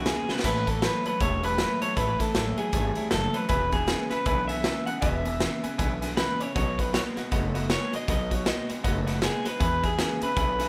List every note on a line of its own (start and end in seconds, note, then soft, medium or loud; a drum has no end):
0.00 0.10 B1 medium
0.05 0.28 E2 medium
0.05 0.26 E2 medium
0.05 0.29 B2 medium
0.05 0.27 C#3 medium
0.05 0.29 E3 medium
0.05 0.28 G#3 medium
0.05 0.28 B3 medium
0.05 0.27 E4 medium
0.05 0.30 G#4 loud
0.05 0.19 B4 medium
0.05 0.20 E5 medium
0.05 0.20 G#5 medium
0.05 snare medium
0.05 closed hi-hat medium
0.28 0.42 E2 medium
0.28 0.42 C#3 medium
0.28 0.42 E3 soft
0.28 0.44 G#3 medium
0.28 0.44 B3 soft
0.28 0.43 E4 medium
0.28 0.38 B4 medium
0.28 0.44 B4 medium
0.28 0.38 E5 medium
0.28 0.38 G#5 medium
0.28 muted upright bass stroke medium
0.28 snare medium
0.39 0.66 A2 medium
0.39 snare medium
0.44 0.87 A1 medium
0.44 0.64 A2 medium
0.44 0.67 E3 medium
0.44 0.65 E3 loud
0.44 0.67 A3 medium
0.44 0.67 C#4 medium
0.44 0.65 E4 medium
0.44 0.68 B4 loud
0.44 0.58 C#5 loud
0.44 0.58 E5 medium
0.44 0.58 A5 loud
0.44 kick loud
0.44 closed hi-hat medium
0.44 splash medium
0.67 0.81 A2 medium
0.67 0.81 E3 medium
0.67 0.82 A3 soft
0.67 0.82 C#4 soft
0.67 0.82 E4 medium
0.67 0.83 A4 medium
0.67 0.76 C#5 medium
0.67 0.76 E5 medium
0.67 0.76 A5 medium
0.67 kick medium
0.67 closed hi-hat medium
0.82 1.03 A2 medium
0.82 1.05 A2 medium
0.82 1.05 E3 medium
0.82 1.03 F#3 loud
0.82 1.06 A3 medium
0.82 1.06 C#4 medium
0.82 1.05 E4 medium
0.82 1.05 B4 medium
0.82 0.96 C#5 medium
0.82 0.96 E5 medium
0.82 0.96 A5 medium
0.82 snare loud
0.82 closed hi-hat medium
1.05 1.19 A2 medium
1.05 1.19 F#3 medium
1.05 1.20 A3 soft
1.05 1.21 C#4 soft
1.05 1.21 E4 medium
1.05 1.21 B4 medium
1.05 1.14 C#5 medium
1.05 1.14 E5 medium
1.05 1.14 A5 medium
1.05 muted upright bass stroke medium
1.05 closed hi-hat medium
1.20 1.63 E1 medium
1.20 1.41 A2 medium
1.20 1.43 E3 medium
1.20 1.41 G3 medium
1.20 1.44 C#4 medium
1.20 1.42 E4 medium
1.20 1.34 C#5 medium
1.20 1.42 C#5 medium
1.20 1.34 E5 medium
1.20 1.34 A5 loud
1.20 kick loud
1.20 closed hi-hat medium
1.43 1.57 A2 medium
1.43 1.57 G3 medium
1.43 1.58 A3 soft
1.43 1.58 C#4 soft
1.43 1.58 E4 medium
1.43 1.79 B4 loud
1.43 1.53 C#5 medium
1.43 1.52 E5 medium
1.43 1.53 A5 medium
1.43 closed hi-hat medium
1.58 1.79 A2 medium
1.58 1.81 A2 medium
1.58 1.82 E3 medium
1.58 1.79 F#3 medium
1.58 1.82 A3 medium
1.58 1.82 C#4 medium
1.58 1.80 E4 medium
1.58 1.72 C#5 medium
1.58 1.72 E5 medium
1.58 1.72 B5 medium
1.58 snare loud
1.58 closed hi-hat medium
1.81 1.95 A2 medium
1.81 1.95 F#3 medium
1.81 1.97 A3 soft
1.81 1.97 C#4 soft
1.81 1.97 E4 medium
1.81 1.90 C#5 medium
1.81 1.96 C#5 loud
1.81 1.90 E5 medium
1.81 1.90 A5 medium
1.81 muted upright bass stroke medium
1.81 closed hi-hat medium
1.96 2.13 A1 medium
1.96 2.17 A2 medium
1.96 2.20 A2 medium
1.96 2.17 E3 loud
1.96 2.20 E3 medium
1.96 2.20 A3 medium
1.96 2.19 C#4 medium
1.96 2.18 E4 medium
1.96 2.19 B4 medium
1.96 2.10 C#5 loud
1.96 2.10 E5 medium
1.96 2.10 A5 loud
1.96 kick loud
1.96 closed hi-hat medium
2.19 2.33 A2 medium
2.19 2.33 E3 medium
2.19 2.33 A3 soft
2.19 2.34 C#4 medium
2.19 2.34 E4 medium
2.19 2.57 A4 medium
2.19 2.29 C#5 medium
2.19 2.29 E5 medium
2.19 2.29 A5 medium
2.19 kick medium
2.19 snare soft
2.19 closed hi-hat medium
2.34 2.54 A1 medium
2.34 2.57 A2 medium
2.34 2.55 A2 medium
2.34 2.58 E3 medium
2.34 2.56 F#3 medium
2.34 2.58 A3 medium
2.34 2.57 C#4 medium
2.34 2.56 E4 medium
2.34 2.49 C#5 medium
2.34 2.49 E5 medium
2.34 2.49 A5 medium
2.34 snare loud
2.34 closed hi-hat medium
2.57 2.71 A2 medium
2.57 2.72 F#3 medium
2.57 2.71 A3 soft
2.57 2.72 C#4 soft
2.57 2.72 E4 soft
2.57 3.11 G#4 medium
2.57 2.67 C#5 medium
2.57 2.67 E5 medium
2.57 2.67 F#5 medium
2.57 muted upright bass stroke medium
2.57 closed hi-hat medium
2.71 2.92 G#1 medium
2.71 2.94 A2 medium
2.71 2.95 E3 medium
2.71 2.94 G3 medium
2.71 2.96 A3 medium
2.71 2.95 C#4 medium
2.71 2.94 E4 medium
2.71 2.87 C#5 loud
2.71 2.87 E5 medium
2.71 2.87 A5 loud
2.71 kick loud
2.71 closed hi-hat medium
2.95 3.10 A2 medium
2.95 3.10 G3 medium
2.95 3.11 A3 soft
2.95 3.11 C#4 soft
2.95 3.11 E4 soft
2.95 3.05 C#5 medium
2.95 3.05 E5 medium
2.95 3.05 A5 medium
2.95 closed hi-hat medium
3.11 3.31 F#1 medium
3.11 3.34 A2 medium
3.11 3.32 A2 medium
3.11 3.34 E3 medium
3.11 3.32 F#3 medium
3.11 3.34 A3 medium
3.11 3.33 C#4 medium
3.11 3.32 E4 medium
3.11 3.34 A4 loud
3.11 3.25 C#5 medium
3.11 3.25 E5 medium
3.11 3.25 A5 medium
3.11 snare loud
3.11 closed hi-hat medium
3.33 3.48 A2 medium
3.33 3.48 F#3 medium
3.33 3.49 A3 soft
3.33 3.49 C#4 medium
3.33 3.49 E4 medium
3.33 3.47 B4 loud
3.33 3.43 C#5 medium
3.33 3.43 E5 medium
3.33 3.43 A5 medium
3.33 closed hi-hat medium
3.48 3.92 E1 medium
3.48 3.72 E2 medium
3.48 3.70 E2 medium
3.48 3.72 B2 medium
3.48 3.71 B2 medium
3.48 3.72 E3 medium
3.48 3.72 G#3 medium
3.48 3.71 B3 medium
3.48 3.70 E4 medium
3.48 3.73 B4 medium
3.48 3.63 B4 loud
3.48 3.63 E5 medium
3.48 3.63 G#5 loud
3.48 kick loud
3.48 closed hi-hat medium
3.71 3.86 E2 medium
3.71 3.86 B2 medium
3.71 3.86 E3 soft
3.71 3.86 G#3 soft
3.71 3.86 B3 soft
3.71 3.86 E4 medium
3.71 4.10 G#4 medium
3.71 3.82 B4 medium
3.71 3.82 E5 medium
3.71 3.82 G#5 medium
3.71 kick medium
3.71 closed hi-hat medium
3.86 4.10 E2 medium
3.86 4.08 E2 medium
3.86 4.10 B2 medium
3.86 4.09 C#3 medium
3.86 4.10 E3 medium
3.86 4.10 G#3 medium
3.86 4.10 B3 medium
3.86 4.09 E4 medium
3.86 4.02 B4 medium
3.86 4.02 E5 medium
3.86 4.01 G#5 medium
3.86 snare loud
3.86 closed hi-hat medium
4.10 4.24 E2 medium
4.10 4.25 C#3 medium
4.10 4.24 E3 soft
4.10 4.25 G#3 soft
4.10 4.25 B3 soft
4.10 4.25 E4 soft
4.10 4.25 B4 medium
4.10 4.20 B4 medium
4.10 4.20 E5 medium
4.10 4.20 G#5 medium
4.10 muted upright bass stroke medium
4.10 snare soft
4.10 closed hi-hat medium
4.25 4.69 B1 medium
4.25 4.47 E2 medium
4.25 4.47 D3 medium
4.25 4.48 E3 medium
4.25 4.48 G#3 medium
4.25 4.48 B3 medium
4.25 4.47 E4 medium
4.25 4.40 B4 loud
4.25 4.47 B4 medium
4.25 4.40 E5 loud
4.25 4.40 G#5 loud
4.25 kick loud
4.25 closed hi-hat medium
4.48 4.62 E2 medium
4.48 4.63 D3 medium
4.48 4.62 E3 soft
4.48 4.62 G#3 soft
4.48 4.63 B3 medium
4.48 4.63 E4 medium
4.48 4.58 B4 medium
4.48 4.86 E5 loud
4.48 4.58 E5 medium
4.48 4.58 G#5 medium
4.48 closed hi-hat medium
4.63 4.86 E2 medium
4.63 4.85 E2 medium
4.63 4.87 B2 medium
4.63 4.85 C#3 medium
4.63 4.86 E3 medium
4.63 4.85 G#3 medium
4.63 4.85 B3 medium
4.63 4.84 E4 medium
4.63 4.78 B4 medium
4.63 4.78 E5 medium
4.63 4.78 G#5 medium
4.63 snare loud
4.63 closed hi-hat medium
4.85 5.01 E2 medium
4.85 5.01 C#3 medium
4.85 5.01 E3 soft
4.85 5.01 G#3 medium
4.85 5.02 B3 medium
4.85 5.01 E4 medium
4.85 4.96 B4 medium
4.85 4.96 E5 medium
4.85 5.01 F#5 loud
4.85 4.96 G#5 medium
4.85 muted upright bass stroke medium
4.85 closed hi-hat medium
5.02 5.45 E1 medium
5.02 5.25 E2 medium
5.02 5.23 E2 loud
5.02 5.25 B2 medium
5.02 5.23 B2 loud
5.02 5.25 E3 medium
5.02 5.25 G#3 medium
5.02 5.24 B3 medium
5.02 5.23 E4 medium
5.02 5.16 B4 loud
5.02 5.16 E5 medium
5.02 6.13 E5 loud
5.02 5.16 G#5 loud
5.02 kick loud
5.02 closed hi-hat medium
5.24 5.39 E2 medium
5.24 5.39 B2 medium
5.24 5.39 E3 soft
5.24 5.39 G#3 medium
5.24 5.40 B3 medium
5.24 5.40 E4 medium
5.24 5.34 B4 medium
5.24 5.34 E5 medium
5.24 5.34 G#5 medium
5.24 closed hi-hat medium
5.40 5.63 E2 medium
5.40 5.61 E2 medium
5.40 5.63 B2 medium
5.40 5.61 C#3 medium
5.40 5.63 E3 medium
5.40 5.64 G#3 medium
5.40 5.63 B3 medium
5.40 5.62 E4 medium
5.40 5.54 B4 medium
5.40 5.54 E5 medium
5.40 5.54 G#5 medium
5.40 snare loud
5.40 closed hi-hat medium
5.63 5.77 E2 medium
5.63 5.77 C#3 medium
5.63 5.77 E3 soft
5.63 5.78 G#3 soft
5.63 5.79 B3 soft
5.63 5.79 E4 soft
5.63 5.72 B4 medium
5.63 5.72 E5 medium
5.63 5.72 G#5 medium
5.63 muted upright bass stroke medium
5.63 closed hi-hat medium
5.78 6.22 B1 medium
5.78 6.00 E2 medium
5.78 6.00 D3 medium
5.78 6.02 E3 medium
5.78 6.02 G#3 medium
5.78 6.02 B3 medium
5.78 6.01 E4 medium
5.78 5.92 B4 loud
5.78 5.92 E5 loud
5.78 5.92 G#5 loud
5.78 kick loud
5.78 closed hi-hat medium
6.02 6.16 E2 medium
6.02 6.16 D3 medium
6.02 6.17 E3 soft
6.02 6.17 G#3 medium
6.02 6.17 B3 medium
6.02 6.17 E4 medium
6.02 6.11 B4 medium
6.02 6.11 E5 medium
6.02 6.11 G#5 loud
6.02 snare soft
6.02 closed hi-hat medium
6.17 6.38 E2 medium
6.17 6.40 E2 medium
6.17 6.40 B2 medium
6.17 6.38 C#3 loud
6.17 6.41 E3 medium
6.17 6.41 G#3 medium
6.17 6.41 B3 medium
6.17 6.39 E4 medium
6.17 6.40 B4 loud
6.17 6.31 B4 medium
6.17 6.31 E5 medium
6.17 6.31 F#5 medium
6.17 snare loud
6.17 closed hi-hat medium
6.40 6.54 E2 medium
6.40 6.54 C#3 medium
6.40 6.56 E3 soft
6.40 6.56 G#3 soft
6.40 6.55 B3 soft
6.40 6.55 E4 medium
6.40 6.50 B4 medium
6.40 6.54 C#5 medium
6.40 6.50 E5 medium
6.40 6.50 G#5 medium
6.40 muted upright bass stroke medium
6.40 closed hi-hat medium
6.55 6.98 B1 medium
6.55 6.76 B2 medium
6.55 6.78 B2 medium
6.55 6.76 F#3 loud
6.55 6.79 F#3 medium
6.55 6.79 B3 medium
6.55 6.79 D#4 medium
6.55 6.77 F#4 medium
6.55 6.69 B4 loud
6.55 6.79 C#5 medium
6.55 6.69 D#5 medium
6.55 6.69 F#5 loud
6.55 kick loud
6.55 closed hi-hat medium
6.78 6.92 B2 medium
6.78 6.92 F#3 medium
6.78 6.93 B3 soft
6.78 6.93 D#4 medium
6.78 6.94 F#4 medium
6.78 6.94 B4 medium
6.78 6.88 B4 medium
6.78 6.88 D#5 medium
6.78 6.88 F#5 medium
6.78 kick medium
6.78 closed hi-hat medium
6.93 7.14 B2 medium
6.93 7.17 B2 medium
6.93 7.17 F#3 medium
6.93 7.14 G#3 loud
6.93 7.17 B3 medium
6.93 7.16 D#4 medium
6.93 7.15 F#4 loud
6.93 7.07 B4 medium
6.93 7.00 C#5 medium
6.93 7.07 D#5 medium
6.93 7.07 F#5 medium
6.93 snare loud
6.93 closed hi-hat medium
7.16 7.30 B2 medium
7.16 7.30 G#3 medium
7.16 7.31 B3 soft
7.16 7.31 D#4 soft
7.16 7.32 F#4 medium
7.16 7.26 B4 medium
7.16 7.26 D#5 medium
7.16 7.26 F#5 medium
7.16 muted upright bass stroke medium
7.16 snare soft
7.16 closed hi-hat medium
7.31 7.75 F#1 medium
7.31 7.52 B2 medium
7.31 7.54 F#3 medium
7.31 7.52 A3 medium
7.31 7.55 B3 medium
7.31 7.55 D#4 medium
7.31 7.54 F#4 medium
7.31 7.45 B4 loud
7.31 7.45 D#5 loud
7.31 7.46 F#5 loud
7.31 kick loud
7.31 closed hi-hat medium
7.54 7.68 B2 medium
7.54 7.68 A3 medium
7.54 7.70 B3 soft
7.54 7.70 D#4 soft
7.54 7.70 F#4 medium
7.54 7.64 B4 medium
7.54 7.64 D#5 medium
7.54 7.64 F#5 loud
7.54 closed hi-hat medium
7.69 7.90 B2 medium
7.69 7.93 B2 medium
7.69 7.93 F#3 medium
7.69 7.90 G#3 medium
7.69 7.93 B3 medium
7.69 7.92 D#4 medium
7.69 7.91 F#4 medium
7.69 7.84 B4 medium
7.69 7.94 C#5 loud
7.69 7.84 D#5 medium
7.69 7.84 F#5 medium
7.69 snare loud
7.69 closed hi-hat medium
7.92 8.06 B2 medium
7.92 8.06 G#3 medium
7.92 8.08 B3 soft
7.92 8.08 D#4 soft
7.92 8.08 F#4 medium
7.92 8.02 B4 medium
7.92 8.02 D#5 medium
7.92 8.08 D#5 loud
7.92 8.02 F#5 medium
7.92 muted upright bass stroke medium
7.92 closed hi-hat medium
8.08 8.51 B1 medium
8.08 8.28 B2 medium
8.08 8.31 B2 medium
8.08 8.29 F#3 loud
8.08 8.31 F#3 medium
8.08 8.32 B3 medium
8.08 8.31 D#4 medium
8.08 8.30 F#4 medium
8.08 8.22 B4 loud
8.08 8.22 D#5 medium
8.08 8.34 D#5 loud
8.08 8.22 F#5 loud
8.08 kick loud
8.08 closed hi-hat medium
8.30 8.44 B2 medium
8.30 8.44 F#3 medium
8.30 8.45 B3 soft
8.30 8.46 D#4 medium
8.30 8.46 F#4 medium
8.30 8.41 B4 medium
8.30 8.47 C#5 medium
8.30 8.40 D#5 medium
8.30 8.41 F#5 medium
8.30 kick medium
8.30 closed hi-hat medium
8.45 8.69 B2 medium
8.45 8.66 B2 medium
8.45 8.69 F#3 medium
8.45 8.67 G#3 medium
8.45 8.69 B3 medium
8.45 8.69 D#4 medium
8.45 8.67 F#4 medium
8.45 8.60 B4 medium
8.45 8.60 D#5 medium
8.45 8.68 D#5 medium
8.45 8.60 F#5 medium
8.45 snare loud
8.45 closed hi-hat medium
8.69 8.82 B2 medium
8.69 8.83 G#3 medium
8.69 8.84 B3 soft
8.69 8.84 D#4 soft
8.69 8.84 F#4 medium
8.69 8.79 B4 medium
8.69 8.79 D#5 medium
8.69 8.79 F#5 medium
8.69 muted upright bass stroke medium
8.69 closed hi-hat medium
8.83 9.27 F#1 medium
8.83 9.05 B2 medium
8.83 9.07 F#3 medium
8.83 9.05 A3 medium
8.83 9.08 B3 medium
8.83 9.07 D#4 medium
8.83 9.06 F#4 medium
8.83 8.98 B4 loud
8.83 8.98 D#5 loud
8.83 8.98 F#5 loud
8.83 kick loud
8.83 closed hi-hat medium
9.07 9.20 B2 medium
9.07 9.21 A3 medium
9.07 9.21 B3 medium
9.07 9.21 D#4 medium
9.07 9.22 F#4 medium
9.07 9.16 B4 loud
9.07 9.16 D#5 medium
9.07 9.16 F#5 loud
9.07 snare soft
9.07 closed hi-hat medium
9.21 9.45 B2 medium
9.21 9.43 B2 medium
9.21 9.45 F#3 medium
9.21 9.43 G#3 medium
9.21 9.46 B3 medium
9.21 9.45 D#4 medium
9.21 9.44 F#4 medium
9.21 9.46 G#4 loud
9.21 9.36 B4 medium
9.21 9.36 D#5 medium
9.21 9.36 F#5 medium
9.21 snare loud
9.21 closed hi-hat medium
9.45 9.59 B2 medium
9.45 9.59 G#3 medium
9.45 9.60 B3 soft
9.45 9.60 D#4 medium
9.45 9.60 F#4 soft
9.45 9.54 B4 medium
9.45 9.60 B4 loud
9.45 9.54 D#5 medium
9.45 9.54 F#5 medium
9.45 muted upright bass stroke medium
9.45 snare soft
9.45 closed hi-hat medium
9.59 9.81 E2 medium
9.59 9.83 E2 medium
9.59 10.03 E2 medium
9.59 9.81 B2 medium
9.59 9.83 B2 medium
9.59 9.84 E3 medium
9.59 9.83 G#3 medium
9.59 9.82 B3 medium
9.59 9.82 G#4 medium
9.59 9.74 B4 medium
9.59 9.85 B4 loud
9.59 9.74 E5 medium
9.59 9.74 G#5 loud
9.59 kick loud
9.59 closed hi-hat medium
9.82 9.97 E2 medium
9.82 9.97 B2 medium
9.82 9.98 E3 soft
9.82 9.98 G#3 medium
9.82 9.98 B3 soft
9.82 9.98 G#4 medium
9.82 10.23 G#4 medium
9.82 9.92 B4 medium
9.82 9.92 E5 medium
9.82 9.92 G#5 medium
9.82 kick medium
9.82 closed hi-hat medium
9.98 10.19 E2 medium
9.98 10.22 E2 medium
9.98 10.22 B2 medium
9.98 10.19 C#3 medium
9.98 10.21 E3 medium
9.98 10.21 G#3 medium
9.98 10.20 B3 medium
9.98 10.19 G#4 medium
9.98 10.12 B4 medium
9.98 10.12 E5 medium
9.98 10.12 G#5 medium
9.98 snare loud
9.98 closed hi-hat medium
10.21 10.35 E2 medium
10.21 10.35 C#3 medium
10.21 10.35 E3 soft
10.21 10.36 G#3 soft
10.21 10.37 B3 soft
10.21 10.36 G#4 medium
10.21 10.31 B4 medium
10.21 10.38 B4 medium
10.21 10.31 E5 medium
10.21 10.31 G#5 medium
10.21 muted upright bass stroke medium
10.21 closed hi-hat medium
10.36 10.69 B1 medium
10.36 10.57 E2 medium
10.36 10.57 D3 medium
10.36 10.59 E3 medium
10.36 10.59 G#3 medium
10.36 10.59 B3 medium
10.36 10.58 G#4 medium
10.36 10.50 B4 loud
10.36 10.69 B4 medium
10.36 10.50 E5 medium
10.36 10.51 G#5 loud
10.36 kick loud
10.36 closed hi-hat medium
10.59 10.69 E2 medium
10.59 10.69 D3 medium
10.59 10.69 E3 soft
10.59 10.69 G#3 medium
10.59 10.69 B3 medium
10.59 10.69 G#4 medium
10.59 10.69 B4 medium
10.59 10.69 E5 medium
10.59 10.69 G#5 medium
10.59 snare soft
10.59 closed hi-hat medium